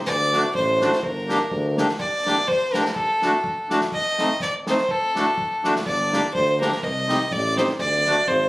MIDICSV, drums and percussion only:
0, 0, Header, 1, 2, 480
1, 0, Start_track
1, 0, Key_signature, -2, "minor"
1, 0, Tempo, 482703
1, 68, Time_signature, 2, 2, 24, 8
1, 8441, End_track
2, 0, Start_track
2, 0, Title_t, "Drums"
2, 69, Note_on_c, 9, 36, 58
2, 169, Note_off_c, 9, 36, 0
2, 328, Note_on_c, 9, 38, 56
2, 428, Note_off_c, 9, 38, 0
2, 546, Note_on_c, 9, 36, 69
2, 646, Note_off_c, 9, 36, 0
2, 810, Note_on_c, 9, 38, 64
2, 909, Note_off_c, 9, 38, 0
2, 921, Note_on_c, 9, 38, 54
2, 1021, Note_off_c, 9, 38, 0
2, 1024, Note_on_c, 9, 36, 57
2, 1124, Note_off_c, 9, 36, 0
2, 1288, Note_on_c, 9, 38, 61
2, 1387, Note_off_c, 9, 38, 0
2, 1505, Note_on_c, 9, 36, 64
2, 1605, Note_off_c, 9, 36, 0
2, 1766, Note_on_c, 9, 38, 68
2, 1865, Note_off_c, 9, 38, 0
2, 1876, Note_on_c, 9, 38, 50
2, 1975, Note_off_c, 9, 38, 0
2, 1985, Note_on_c, 9, 36, 58
2, 2084, Note_off_c, 9, 36, 0
2, 2252, Note_on_c, 9, 38, 53
2, 2351, Note_off_c, 9, 38, 0
2, 2467, Note_on_c, 9, 36, 57
2, 2567, Note_off_c, 9, 36, 0
2, 2726, Note_on_c, 9, 38, 64
2, 2825, Note_off_c, 9, 38, 0
2, 2836, Note_on_c, 9, 38, 47
2, 2935, Note_off_c, 9, 38, 0
2, 2943, Note_on_c, 9, 36, 49
2, 3043, Note_off_c, 9, 36, 0
2, 3203, Note_on_c, 9, 38, 57
2, 3302, Note_off_c, 9, 38, 0
2, 3420, Note_on_c, 9, 36, 63
2, 3519, Note_off_c, 9, 36, 0
2, 3681, Note_on_c, 9, 38, 57
2, 3780, Note_off_c, 9, 38, 0
2, 3789, Note_on_c, 9, 38, 51
2, 3888, Note_off_c, 9, 38, 0
2, 3898, Note_on_c, 9, 36, 52
2, 3998, Note_off_c, 9, 36, 0
2, 4160, Note_on_c, 9, 38, 58
2, 4259, Note_off_c, 9, 38, 0
2, 4377, Note_on_c, 9, 36, 60
2, 4476, Note_off_c, 9, 36, 0
2, 4640, Note_on_c, 9, 38, 64
2, 4740, Note_off_c, 9, 38, 0
2, 4750, Note_on_c, 9, 38, 56
2, 4849, Note_off_c, 9, 38, 0
2, 4859, Note_on_c, 9, 36, 44
2, 4959, Note_off_c, 9, 36, 0
2, 5127, Note_on_c, 9, 38, 51
2, 5227, Note_off_c, 9, 38, 0
2, 5345, Note_on_c, 9, 36, 61
2, 5444, Note_off_c, 9, 36, 0
2, 5613, Note_on_c, 9, 38, 55
2, 5713, Note_off_c, 9, 38, 0
2, 5727, Note_on_c, 9, 38, 50
2, 5826, Note_off_c, 9, 38, 0
2, 5829, Note_on_c, 9, 36, 59
2, 5929, Note_off_c, 9, 36, 0
2, 6099, Note_on_c, 9, 38, 64
2, 6198, Note_off_c, 9, 38, 0
2, 6313, Note_on_c, 9, 36, 59
2, 6412, Note_off_c, 9, 36, 0
2, 6577, Note_on_c, 9, 38, 60
2, 6677, Note_off_c, 9, 38, 0
2, 6684, Note_on_c, 9, 38, 48
2, 6784, Note_off_c, 9, 38, 0
2, 6792, Note_on_c, 9, 36, 54
2, 6891, Note_off_c, 9, 36, 0
2, 7051, Note_on_c, 9, 38, 55
2, 7151, Note_off_c, 9, 38, 0
2, 7271, Note_on_c, 9, 36, 59
2, 7370, Note_off_c, 9, 36, 0
2, 7534, Note_on_c, 9, 38, 67
2, 7633, Note_off_c, 9, 38, 0
2, 7635, Note_on_c, 9, 38, 54
2, 7735, Note_off_c, 9, 38, 0
2, 7748, Note_on_c, 9, 36, 53
2, 7848, Note_off_c, 9, 36, 0
2, 8009, Note_on_c, 9, 38, 55
2, 8108, Note_off_c, 9, 38, 0
2, 8230, Note_on_c, 9, 36, 55
2, 8330, Note_off_c, 9, 36, 0
2, 8441, End_track
0, 0, End_of_file